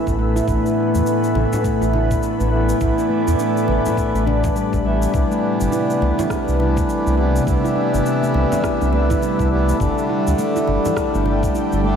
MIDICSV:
0, 0, Header, 1, 6, 480
1, 0, Start_track
1, 0, Key_signature, 0, "minor"
1, 0, Tempo, 582524
1, 396, Time_signature, 4, 2, 24, 8
1, 9856, End_track
2, 0, Start_track
2, 0, Title_t, "Ambient pad"
2, 0, Program_c, 0, 92
2, 0, Note_on_c, 0, 45, 74
2, 0, Note_on_c, 0, 57, 83
2, 0, Note_on_c, 0, 71, 68
2, 0, Note_on_c, 0, 76, 73
2, 1572, Note_on_c, 0, 74, 71
2, 1736, Note_off_c, 0, 76, 0
2, 4230, Note_on_c, 0, 48, 85
2, 4237, Note_off_c, 0, 45, 0
2, 4237, Note_off_c, 0, 57, 0
2, 4462, Note_on_c, 0, 55, 78
2, 4868, Note_off_c, 0, 74, 0
2, 5405, Note_on_c, 0, 76, 82
2, 8073, Note_off_c, 0, 48, 0
2, 8200, Note_on_c, 0, 62, 90
2, 8234, Note_on_c, 0, 79, 87
2, 8273, Note_on_c, 0, 69, 76
2, 9463, Note_off_c, 0, 76, 0
2, 9584, Note_off_c, 0, 71, 0
2, 9856, Note_off_c, 0, 55, 0
2, 9856, Note_off_c, 0, 62, 0
2, 9856, Note_off_c, 0, 69, 0
2, 9856, Note_off_c, 0, 79, 0
2, 9856, End_track
3, 0, Start_track
3, 0, Title_t, "Handpan"
3, 0, Program_c, 1, 114
3, 0, Note_on_c, 1, 64, 75
3, 147, Note_off_c, 1, 64, 0
3, 153, Note_on_c, 1, 57, 70
3, 292, Note_off_c, 1, 57, 0
3, 297, Note_on_c, 1, 64, 95
3, 385, Note_off_c, 1, 64, 0
3, 393, Note_on_c, 1, 62, 74
3, 477, Note_off_c, 1, 62, 0
3, 776, Note_on_c, 1, 57, 67
3, 1105, Note_off_c, 1, 57, 0
3, 1112, Note_on_c, 1, 64, 67
3, 1345, Note_off_c, 1, 64, 0
3, 1350, Note_on_c, 1, 57, 72
3, 1490, Note_off_c, 1, 57, 0
3, 1495, Note_on_c, 1, 64, 86
3, 1584, Note_off_c, 1, 64, 0
3, 1595, Note_on_c, 1, 62, 67
3, 1678, Note_off_c, 1, 62, 0
3, 1979, Note_on_c, 1, 57, 71
3, 2306, Note_off_c, 1, 57, 0
3, 2317, Note_on_c, 1, 64, 69
3, 2547, Note_off_c, 1, 64, 0
3, 2553, Note_on_c, 1, 57, 68
3, 2692, Note_off_c, 1, 57, 0
3, 2699, Note_on_c, 1, 64, 91
3, 2786, Note_off_c, 1, 64, 0
3, 2796, Note_on_c, 1, 62, 74
3, 2878, Note_off_c, 1, 62, 0
3, 3180, Note_on_c, 1, 57, 62
3, 3507, Note_off_c, 1, 57, 0
3, 3513, Note_on_c, 1, 62, 86
3, 3652, Note_off_c, 1, 62, 0
3, 3754, Note_on_c, 1, 55, 69
3, 3892, Note_off_c, 1, 55, 0
3, 3898, Note_on_c, 1, 62, 70
3, 3954, Note_off_c, 1, 62, 0
3, 3993, Note_on_c, 1, 55, 65
3, 4124, Note_off_c, 1, 55, 0
3, 4377, Note_on_c, 1, 57, 68
3, 4705, Note_off_c, 1, 57, 0
3, 4714, Note_on_c, 1, 64, 72
3, 4946, Note_off_c, 1, 64, 0
3, 4952, Note_on_c, 1, 57, 69
3, 5091, Note_off_c, 1, 57, 0
3, 5096, Note_on_c, 1, 64, 84
3, 5185, Note_off_c, 1, 64, 0
3, 5191, Note_on_c, 1, 62, 73
3, 5276, Note_off_c, 1, 62, 0
3, 5574, Note_on_c, 1, 57, 74
3, 5904, Note_off_c, 1, 57, 0
3, 5911, Note_on_c, 1, 64, 75
3, 6144, Note_off_c, 1, 64, 0
3, 6153, Note_on_c, 1, 57, 73
3, 6291, Note_off_c, 1, 57, 0
3, 6298, Note_on_c, 1, 64, 95
3, 6386, Note_off_c, 1, 64, 0
3, 6392, Note_on_c, 1, 62, 73
3, 6476, Note_off_c, 1, 62, 0
3, 6778, Note_on_c, 1, 57, 73
3, 7106, Note_off_c, 1, 57, 0
3, 7118, Note_on_c, 1, 64, 71
3, 7348, Note_off_c, 1, 64, 0
3, 7359, Note_on_c, 1, 57, 69
3, 7495, Note_off_c, 1, 57, 0
3, 7503, Note_on_c, 1, 64, 95
3, 7588, Note_off_c, 1, 64, 0
3, 7598, Note_on_c, 1, 62, 77
3, 7679, Note_off_c, 1, 62, 0
3, 7983, Note_on_c, 1, 57, 76
3, 8078, Note_off_c, 1, 57, 0
3, 8318, Note_on_c, 1, 64, 70
3, 8548, Note_off_c, 1, 64, 0
3, 8558, Note_on_c, 1, 57, 79
3, 8694, Note_off_c, 1, 57, 0
3, 8704, Note_on_c, 1, 64, 91
3, 8789, Note_off_c, 1, 64, 0
3, 8800, Note_on_c, 1, 62, 70
3, 8880, Note_off_c, 1, 62, 0
3, 9185, Note_on_c, 1, 57, 72
3, 9509, Note_off_c, 1, 57, 0
3, 9518, Note_on_c, 1, 64, 78
3, 9748, Note_off_c, 1, 64, 0
3, 9756, Note_on_c, 1, 57, 79
3, 9856, Note_off_c, 1, 57, 0
3, 9856, End_track
4, 0, Start_track
4, 0, Title_t, "Harmonium"
4, 0, Program_c, 2, 20
4, 0, Note_on_c, 2, 52, 72
4, 0, Note_on_c, 2, 57, 68
4, 0, Note_on_c, 2, 59, 68
4, 0, Note_on_c, 2, 64, 84
4, 128, Note_off_c, 2, 52, 0
4, 130, Note_off_c, 2, 57, 0
4, 132, Note_off_c, 2, 59, 0
4, 135, Note_off_c, 2, 64, 0
4, 146, Note_on_c, 2, 52, 96
4, 151, Note_on_c, 2, 57, 85
4, 159, Note_on_c, 2, 59, 83
4, 163, Note_on_c, 2, 64, 95
4, 364, Note_off_c, 2, 52, 0
4, 371, Note_off_c, 2, 57, 0
4, 374, Note_off_c, 2, 59, 0
4, 377, Note_off_c, 2, 64, 0
4, 377, Note_on_c, 2, 52, 87
4, 387, Note_on_c, 2, 57, 75
4, 400, Note_on_c, 2, 59, 75
4, 408, Note_on_c, 2, 64, 91
4, 1563, Note_off_c, 2, 52, 0
4, 1569, Note_off_c, 2, 57, 0
4, 1575, Note_off_c, 2, 59, 0
4, 1579, Note_off_c, 2, 64, 0
4, 1589, Note_on_c, 2, 52, 73
4, 1596, Note_on_c, 2, 57, 68
4, 1601, Note_on_c, 2, 59, 66
4, 1605, Note_on_c, 2, 64, 77
4, 2050, Note_off_c, 2, 52, 0
4, 2053, Note_off_c, 2, 57, 0
4, 2056, Note_off_c, 2, 59, 0
4, 2058, Note_off_c, 2, 64, 0
4, 2064, Note_on_c, 2, 52, 88
4, 2070, Note_on_c, 2, 57, 79
4, 2076, Note_on_c, 2, 59, 80
4, 2081, Note_on_c, 2, 64, 93
4, 2286, Note_off_c, 2, 52, 0
4, 2290, Note_off_c, 2, 57, 0
4, 2293, Note_off_c, 2, 59, 0
4, 2296, Note_off_c, 2, 64, 0
4, 2298, Note_on_c, 2, 52, 85
4, 2309, Note_on_c, 2, 57, 76
4, 2320, Note_on_c, 2, 59, 74
4, 2330, Note_on_c, 2, 64, 94
4, 3484, Note_off_c, 2, 52, 0
4, 3490, Note_off_c, 2, 57, 0
4, 3495, Note_off_c, 2, 59, 0
4, 3500, Note_off_c, 2, 64, 0
4, 3980, Note_on_c, 2, 52, 87
4, 3988, Note_on_c, 2, 57, 78
4, 3993, Note_on_c, 2, 59, 75
4, 3998, Note_on_c, 2, 64, 101
4, 4199, Note_off_c, 2, 52, 0
4, 4209, Note_off_c, 2, 57, 0
4, 4212, Note_off_c, 2, 59, 0
4, 4212, Note_on_c, 2, 52, 82
4, 4214, Note_off_c, 2, 64, 0
4, 4224, Note_on_c, 2, 55, 75
4, 4233, Note_on_c, 2, 59, 74
4, 4245, Note_on_c, 2, 62, 85
4, 5401, Note_off_c, 2, 52, 0
4, 5407, Note_off_c, 2, 55, 0
4, 5412, Note_off_c, 2, 59, 0
4, 5418, Note_off_c, 2, 62, 0
4, 5423, Note_on_c, 2, 52, 77
4, 5428, Note_on_c, 2, 55, 64
4, 5434, Note_on_c, 2, 59, 71
4, 5440, Note_on_c, 2, 62, 84
4, 5887, Note_off_c, 2, 52, 0
4, 5889, Note_off_c, 2, 55, 0
4, 5892, Note_off_c, 2, 59, 0
4, 5895, Note_off_c, 2, 62, 0
4, 5901, Note_on_c, 2, 52, 90
4, 5906, Note_on_c, 2, 55, 84
4, 5911, Note_on_c, 2, 59, 85
4, 5917, Note_on_c, 2, 62, 100
4, 6125, Note_off_c, 2, 52, 0
4, 6128, Note_off_c, 2, 55, 0
4, 6131, Note_off_c, 2, 59, 0
4, 6134, Note_off_c, 2, 62, 0
4, 6138, Note_on_c, 2, 52, 83
4, 6148, Note_on_c, 2, 55, 77
4, 6159, Note_on_c, 2, 59, 76
4, 6170, Note_on_c, 2, 62, 95
4, 7324, Note_off_c, 2, 52, 0
4, 7329, Note_off_c, 2, 55, 0
4, 7335, Note_off_c, 2, 59, 0
4, 7340, Note_off_c, 2, 62, 0
4, 7345, Note_on_c, 2, 52, 75
4, 7351, Note_on_c, 2, 55, 69
4, 7355, Note_on_c, 2, 59, 71
4, 7360, Note_on_c, 2, 62, 87
4, 7808, Note_off_c, 2, 52, 0
4, 7811, Note_off_c, 2, 55, 0
4, 7813, Note_off_c, 2, 59, 0
4, 7815, Note_off_c, 2, 62, 0
4, 7822, Note_on_c, 2, 52, 94
4, 7828, Note_on_c, 2, 55, 89
4, 7833, Note_on_c, 2, 59, 81
4, 7839, Note_on_c, 2, 62, 110
4, 8046, Note_off_c, 2, 52, 0
4, 8049, Note_off_c, 2, 55, 0
4, 8052, Note_off_c, 2, 59, 0
4, 8055, Note_off_c, 2, 62, 0
4, 8056, Note_on_c, 2, 50, 89
4, 8067, Note_on_c, 2, 55, 75
4, 8080, Note_on_c, 2, 57, 78
4, 8090, Note_on_c, 2, 62, 100
4, 9243, Note_off_c, 2, 50, 0
4, 9248, Note_off_c, 2, 55, 0
4, 9255, Note_off_c, 2, 57, 0
4, 9260, Note_off_c, 2, 62, 0
4, 9261, Note_on_c, 2, 50, 78
4, 9267, Note_on_c, 2, 55, 70
4, 9272, Note_on_c, 2, 57, 69
4, 9278, Note_on_c, 2, 62, 89
4, 9725, Note_off_c, 2, 50, 0
4, 9729, Note_off_c, 2, 55, 0
4, 9731, Note_off_c, 2, 57, 0
4, 9734, Note_off_c, 2, 62, 0
4, 9741, Note_on_c, 2, 50, 101
4, 9747, Note_on_c, 2, 55, 85
4, 9752, Note_on_c, 2, 57, 90
4, 9757, Note_on_c, 2, 62, 109
4, 9856, Note_off_c, 2, 50, 0
4, 9856, Note_off_c, 2, 55, 0
4, 9856, Note_off_c, 2, 57, 0
4, 9856, Note_off_c, 2, 62, 0
4, 9856, End_track
5, 0, Start_track
5, 0, Title_t, "Analog synth bass"
5, 0, Program_c, 3, 38
5, 59, Note_on_c, 3, 33, 88
5, 337, Note_off_c, 3, 33, 0
5, 395, Note_on_c, 3, 33, 96
5, 485, Note_off_c, 3, 33, 0
5, 782, Note_on_c, 3, 40, 81
5, 841, Note_off_c, 3, 40, 0
5, 1112, Note_on_c, 3, 33, 81
5, 1203, Note_off_c, 3, 33, 0
5, 1497, Note_on_c, 3, 33, 91
5, 1776, Note_off_c, 3, 33, 0
5, 1977, Note_on_c, 3, 33, 95
5, 2256, Note_off_c, 3, 33, 0
5, 2316, Note_on_c, 3, 33, 94
5, 2405, Note_off_c, 3, 33, 0
5, 2700, Note_on_c, 3, 40, 78
5, 2760, Note_off_c, 3, 40, 0
5, 3036, Note_on_c, 3, 33, 93
5, 3125, Note_off_c, 3, 33, 0
5, 3415, Note_on_c, 3, 33, 97
5, 3695, Note_off_c, 3, 33, 0
5, 3897, Note_on_c, 3, 33, 88
5, 4176, Note_off_c, 3, 33, 0
5, 4234, Note_on_c, 3, 36, 98
5, 4324, Note_off_c, 3, 36, 0
5, 4621, Note_on_c, 3, 31, 81
5, 4680, Note_off_c, 3, 31, 0
5, 4958, Note_on_c, 3, 36, 91
5, 5046, Note_off_c, 3, 36, 0
5, 5340, Note_on_c, 3, 36, 94
5, 5617, Note_off_c, 3, 36, 0
5, 5821, Note_on_c, 3, 36, 86
5, 6098, Note_off_c, 3, 36, 0
5, 6154, Note_on_c, 3, 36, 97
5, 6244, Note_off_c, 3, 36, 0
5, 6542, Note_on_c, 3, 31, 78
5, 6600, Note_off_c, 3, 31, 0
5, 6876, Note_on_c, 3, 36, 90
5, 6965, Note_off_c, 3, 36, 0
5, 7264, Note_on_c, 3, 36, 89
5, 7540, Note_off_c, 3, 36, 0
5, 7743, Note_on_c, 3, 36, 96
5, 8019, Note_off_c, 3, 36, 0
5, 8075, Note_on_c, 3, 31, 102
5, 8165, Note_off_c, 3, 31, 0
5, 8465, Note_on_c, 3, 38, 81
5, 8522, Note_off_c, 3, 38, 0
5, 8798, Note_on_c, 3, 31, 89
5, 8886, Note_off_c, 3, 31, 0
5, 9183, Note_on_c, 3, 31, 101
5, 9459, Note_off_c, 3, 31, 0
5, 9661, Note_on_c, 3, 31, 94
5, 9856, Note_off_c, 3, 31, 0
5, 9856, End_track
6, 0, Start_track
6, 0, Title_t, "Drums"
6, 57, Note_on_c, 9, 36, 54
6, 61, Note_on_c, 9, 69, 30
6, 66, Note_on_c, 9, 63, 33
6, 139, Note_off_c, 9, 36, 0
6, 144, Note_off_c, 9, 69, 0
6, 148, Note_off_c, 9, 63, 0
6, 303, Note_on_c, 9, 69, 64
6, 386, Note_off_c, 9, 69, 0
6, 393, Note_on_c, 9, 36, 103
6, 397, Note_on_c, 9, 69, 50
6, 475, Note_off_c, 9, 36, 0
6, 480, Note_off_c, 9, 69, 0
6, 543, Note_on_c, 9, 69, 31
6, 625, Note_off_c, 9, 69, 0
6, 783, Note_on_c, 9, 69, 66
6, 785, Note_on_c, 9, 63, 30
6, 865, Note_off_c, 9, 69, 0
6, 868, Note_off_c, 9, 63, 0
6, 878, Note_on_c, 9, 69, 54
6, 960, Note_off_c, 9, 69, 0
6, 1020, Note_on_c, 9, 69, 32
6, 1102, Note_off_c, 9, 69, 0
6, 1115, Note_on_c, 9, 63, 69
6, 1197, Note_off_c, 9, 63, 0
6, 1260, Note_on_c, 9, 64, 84
6, 1260, Note_on_c, 9, 69, 60
6, 1261, Note_on_c, 9, 60, 34
6, 1342, Note_off_c, 9, 64, 0
6, 1343, Note_off_c, 9, 60, 0
6, 1343, Note_off_c, 9, 69, 0
6, 1355, Note_on_c, 9, 36, 60
6, 1356, Note_on_c, 9, 69, 52
6, 1437, Note_off_c, 9, 36, 0
6, 1439, Note_off_c, 9, 69, 0
6, 1501, Note_on_c, 9, 69, 29
6, 1583, Note_off_c, 9, 69, 0
6, 1595, Note_on_c, 9, 63, 77
6, 1677, Note_off_c, 9, 63, 0
6, 1738, Note_on_c, 9, 36, 97
6, 1741, Note_on_c, 9, 69, 62
6, 1820, Note_off_c, 9, 36, 0
6, 1823, Note_off_c, 9, 69, 0
6, 1836, Note_on_c, 9, 69, 51
6, 1918, Note_off_c, 9, 69, 0
6, 1980, Note_on_c, 9, 69, 31
6, 2063, Note_off_c, 9, 69, 0
6, 2219, Note_on_c, 9, 69, 67
6, 2301, Note_off_c, 9, 69, 0
6, 2314, Note_on_c, 9, 69, 50
6, 2315, Note_on_c, 9, 36, 109
6, 2396, Note_off_c, 9, 69, 0
6, 2397, Note_off_c, 9, 36, 0
6, 2454, Note_on_c, 9, 60, 29
6, 2459, Note_on_c, 9, 69, 30
6, 2537, Note_off_c, 9, 60, 0
6, 2542, Note_off_c, 9, 69, 0
6, 2701, Note_on_c, 9, 69, 64
6, 2707, Note_on_c, 9, 63, 29
6, 2783, Note_off_c, 9, 69, 0
6, 2789, Note_off_c, 9, 63, 0
6, 2796, Note_on_c, 9, 69, 56
6, 2878, Note_off_c, 9, 69, 0
6, 2942, Note_on_c, 9, 69, 31
6, 3024, Note_off_c, 9, 69, 0
6, 3032, Note_on_c, 9, 63, 68
6, 3114, Note_off_c, 9, 63, 0
6, 3179, Note_on_c, 9, 69, 60
6, 3184, Note_on_c, 9, 64, 83
6, 3261, Note_off_c, 9, 69, 0
6, 3267, Note_off_c, 9, 64, 0
6, 3273, Note_on_c, 9, 36, 55
6, 3277, Note_on_c, 9, 69, 52
6, 3355, Note_off_c, 9, 36, 0
6, 3360, Note_off_c, 9, 69, 0
6, 3423, Note_on_c, 9, 69, 29
6, 3425, Note_on_c, 9, 60, 56
6, 3505, Note_off_c, 9, 69, 0
6, 3508, Note_off_c, 9, 60, 0
6, 3521, Note_on_c, 9, 63, 67
6, 3603, Note_off_c, 9, 63, 0
6, 3657, Note_on_c, 9, 36, 101
6, 3659, Note_on_c, 9, 69, 59
6, 3665, Note_on_c, 9, 64, 77
6, 3740, Note_off_c, 9, 36, 0
6, 3742, Note_off_c, 9, 69, 0
6, 3748, Note_off_c, 9, 64, 0
6, 3756, Note_on_c, 9, 63, 30
6, 3758, Note_on_c, 9, 69, 54
6, 3838, Note_off_c, 9, 63, 0
6, 3840, Note_off_c, 9, 69, 0
6, 3897, Note_on_c, 9, 36, 53
6, 3899, Note_on_c, 9, 63, 30
6, 3900, Note_on_c, 9, 69, 29
6, 3979, Note_off_c, 9, 36, 0
6, 3981, Note_off_c, 9, 63, 0
6, 3982, Note_off_c, 9, 69, 0
6, 4140, Note_on_c, 9, 69, 61
6, 4222, Note_off_c, 9, 69, 0
6, 4233, Note_on_c, 9, 36, 98
6, 4236, Note_on_c, 9, 69, 49
6, 4316, Note_off_c, 9, 36, 0
6, 4318, Note_off_c, 9, 69, 0
6, 4381, Note_on_c, 9, 69, 32
6, 4463, Note_off_c, 9, 69, 0
6, 4620, Note_on_c, 9, 63, 28
6, 4620, Note_on_c, 9, 69, 63
6, 4702, Note_off_c, 9, 63, 0
6, 4703, Note_off_c, 9, 69, 0
6, 4717, Note_on_c, 9, 69, 50
6, 4800, Note_off_c, 9, 69, 0
6, 4863, Note_on_c, 9, 69, 29
6, 4946, Note_off_c, 9, 69, 0
6, 4960, Note_on_c, 9, 63, 62
6, 5043, Note_off_c, 9, 63, 0
6, 5100, Note_on_c, 9, 60, 34
6, 5101, Note_on_c, 9, 64, 88
6, 5102, Note_on_c, 9, 69, 56
6, 5182, Note_off_c, 9, 60, 0
6, 5183, Note_off_c, 9, 64, 0
6, 5184, Note_off_c, 9, 69, 0
6, 5193, Note_on_c, 9, 37, 62
6, 5194, Note_on_c, 9, 36, 56
6, 5198, Note_on_c, 9, 69, 51
6, 5275, Note_off_c, 9, 37, 0
6, 5277, Note_off_c, 9, 36, 0
6, 5280, Note_off_c, 9, 69, 0
6, 5341, Note_on_c, 9, 69, 30
6, 5423, Note_off_c, 9, 69, 0
6, 5436, Note_on_c, 9, 63, 72
6, 5518, Note_off_c, 9, 63, 0
6, 5579, Note_on_c, 9, 36, 99
6, 5581, Note_on_c, 9, 69, 61
6, 5661, Note_off_c, 9, 36, 0
6, 5664, Note_off_c, 9, 69, 0
6, 5680, Note_on_c, 9, 69, 50
6, 5762, Note_off_c, 9, 69, 0
6, 5825, Note_on_c, 9, 69, 30
6, 5907, Note_off_c, 9, 69, 0
6, 6064, Note_on_c, 9, 69, 62
6, 6147, Note_off_c, 9, 69, 0
6, 6155, Note_on_c, 9, 36, 98
6, 6159, Note_on_c, 9, 69, 52
6, 6238, Note_off_c, 9, 36, 0
6, 6242, Note_off_c, 9, 69, 0
6, 6305, Note_on_c, 9, 69, 29
6, 6310, Note_on_c, 9, 60, 30
6, 6388, Note_off_c, 9, 69, 0
6, 6392, Note_off_c, 9, 60, 0
6, 6546, Note_on_c, 9, 69, 58
6, 6628, Note_off_c, 9, 69, 0
6, 6642, Note_on_c, 9, 69, 52
6, 6724, Note_off_c, 9, 69, 0
6, 6785, Note_on_c, 9, 69, 31
6, 6868, Note_off_c, 9, 69, 0
6, 6874, Note_on_c, 9, 63, 62
6, 6956, Note_off_c, 9, 63, 0
6, 7020, Note_on_c, 9, 64, 94
6, 7023, Note_on_c, 9, 69, 56
6, 7103, Note_off_c, 9, 64, 0
6, 7106, Note_off_c, 9, 69, 0
6, 7116, Note_on_c, 9, 36, 56
6, 7117, Note_on_c, 9, 37, 68
6, 7122, Note_on_c, 9, 69, 47
6, 7199, Note_off_c, 9, 36, 0
6, 7199, Note_off_c, 9, 37, 0
6, 7204, Note_off_c, 9, 69, 0
6, 7261, Note_on_c, 9, 60, 57
6, 7264, Note_on_c, 9, 69, 29
6, 7344, Note_off_c, 9, 60, 0
6, 7346, Note_off_c, 9, 69, 0
6, 7354, Note_on_c, 9, 63, 65
6, 7437, Note_off_c, 9, 63, 0
6, 7500, Note_on_c, 9, 36, 94
6, 7504, Note_on_c, 9, 64, 67
6, 7504, Note_on_c, 9, 69, 60
6, 7582, Note_off_c, 9, 36, 0
6, 7586, Note_off_c, 9, 69, 0
6, 7587, Note_off_c, 9, 64, 0
6, 7593, Note_on_c, 9, 63, 37
6, 7602, Note_on_c, 9, 69, 52
6, 7676, Note_off_c, 9, 63, 0
6, 7684, Note_off_c, 9, 69, 0
6, 7738, Note_on_c, 9, 63, 34
6, 7740, Note_on_c, 9, 36, 54
6, 7744, Note_on_c, 9, 69, 29
6, 7820, Note_off_c, 9, 63, 0
6, 7822, Note_off_c, 9, 36, 0
6, 7827, Note_off_c, 9, 69, 0
6, 7985, Note_on_c, 9, 69, 60
6, 8067, Note_off_c, 9, 69, 0
6, 8075, Note_on_c, 9, 36, 102
6, 8083, Note_on_c, 9, 69, 50
6, 8158, Note_off_c, 9, 36, 0
6, 8166, Note_off_c, 9, 69, 0
6, 8225, Note_on_c, 9, 69, 29
6, 8307, Note_off_c, 9, 69, 0
6, 8458, Note_on_c, 9, 63, 33
6, 8465, Note_on_c, 9, 69, 61
6, 8540, Note_off_c, 9, 63, 0
6, 8548, Note_off_c, 9, 69, 0
6, 8558, Note_on_c, 9, 69, 52
6, 8640, Note_off_c, 9, 69, 0
6, 8703, Note_on_c, 9, 69, 32
6, 8785, Note_off_c, 9, 69, 0
6, 8796, Note_on_c, 9, 63, 63
6, 8879, Note_off_c, 9, 63, 0
6, 8943, Note_on_c, 9, 69, 55
6, 8946, Note_on_c, 9, 64, 90
6, 8947, Note_on_c, 9, 60, 34
6, 9025, Note_off_c, 9, 69, 0
6, 9028, Note_off_c, 9, 64, 0
6, 9029, Note_off_c, 9, 60, 0
6, 9035, Note_on_c, 9, 36, 57
6, 9036, Note_on_c, 9, 37, 74
6, 9040, Note_on_c, 9, 69, 50
6, 9118, Note_off_c, 9, 36, 0
6, 9118, Note_off_c, 9, 37, 0
6, 9123, Note_off_c, 9, 69, 0
6, 9184, Note_on_c, 9, 69, 30
6, 9266, Note_off_c, 9, 69, 0
6, 9275, Note_on_c, 9, 63, 70
6, 9357, Note_off_c, 9, 63, 0
6, 9419, Note_on_c, 9, 36, 92
6, 9423, Note_on_c, 9, 69, 61
6, 9501, Note_off_c, 9, 36, 0
6, 9505, Note_off_c, 9, 69, 0
6, 9516, Note_on_c, 9, 69, 51
6, 9598, Note_off_c, 9, 69, 0
6, 9660, Note_on_c, 9, 69, 28
6, 9743, Note_off_c, 9, 69, 0
6, 9856, End_track
0, 0, End_of_file